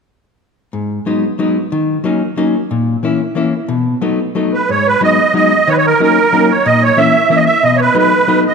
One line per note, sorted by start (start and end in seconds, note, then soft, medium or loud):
0.73 0.98 G#2 medium
1.06 1.24 F#3 soft
1.06 1.24 G#3 soft
1.06 1.24 B3 soft
1.06 1.24 D#4 soft
1.39 1.57 F#3 soft
1.39 1.57 G#3 soft
1.39 1.57 B3 soft
1.39 1.57 D#4 medium
1.72 1.97 D#3 medium
2.04 2.22 F#3 medium
2.04 2.22 A#3 soft
2.04 2.22 C#4 soft
2.04 2.22 D#4 soft
2.37 2.55 F#3 soft
2.37 2.55 A#3 soft
2.37 2.55 C#4 soft
2.37 2.55 D#4 medium
2.71 2.95 A#2 medium
3.03 3.20 E3 soft
3.03 3.20 A#3 soft
3.03 3.21 C#4 soft
3.03 3.20 E4 medium
3.35 3.53 E3 soft
3.35 3.53 A#3 soft
3.35 3.53 C#4 soft
3.35 3.53 E4 medium
3.69 3.94 B2 medium
4.01 4.19 F#3 medium
4.01 4.19 A3 soft
4.01 4.19 B3 soft
4.01 4.19 D#4 soft
4.35 4.53 F#3 soft
4.35 4.53 A3 soft
4.35 4.53 B3 soft
4.35 4.53 D#4 soft
4.53 4.70 B4 medium
4.69 4.94 G#2 medium
4.69 4.87 C#5 medium
4.87 5.02 B4 medium
5.01 5.19 F#3 soft
5.01 5.19 G#3 soft
5.01 5.19 B3 soft
5.01 5.19 D#4 soft
5.01 5.34 D#5 medium
5.34 5.52 F#3 medium
5.34 5.52 G#3 soft
5.34 5.52 B3 soft
5.34 5.52 D#4 soft
5.34 5.69 D#5 medium
5.67 5.93 D#3 medium
5.67 5.73 C#5 medium
5.72 5.76 B4 medium
5.77 5.86 C#5 medium
5.87 6.01 A#4 medium
6.00 6.18 F#3 soft
6.00 6.18 A#3 soft
6.00 6.18 C#4 soft
6.00 6.18 D#4 medium
6.00 6.53 A#4 medium
6.32 6.50 F#3 soft
6.32 6.50 A#3 soft
6.32 6.50 C#4 soft
6.32 6.50 D#4 soft
6.51 6.67 C#5 medium
6.66 6.90 A#2 medium
6.66 6.83 D#5 medium
6.83 6.99 C#5 medium
6.97 7.15 E3 medium
6.97 7.15 A#3 soft
6.97 7.15 C#4 medium
6.97 7.15 E4 medium
6.97 7.29 E5 medium
7.30 7.47 E3 medium
7.30 7.47 A#3 soft
7.30 7.48 C#4 soft
7.30 7.48 E4 medium
7.30 7.38 E5 medium
7.36 7.44 D#5 medium
7.46 7.64 E5 loud
7.63 7.88 B2 medium
7.63 7.77 D#5 medium
7.76 7.80 C#5 soft
7.81 7.97 B4 medium
7.95 8.13 F#3 soft
7.95 8.13 A3 soft
7.95 8.13 B3 soft
7.95 8.13 D#4 soft
7.95 8.44 B4 medium
8.28 8.46 F#3 soft
8.28 8.46 A3 soft
8.28 8.46 B3 soft
8.28 8.46 D#4 medium
8.47 8.54 D#5 medium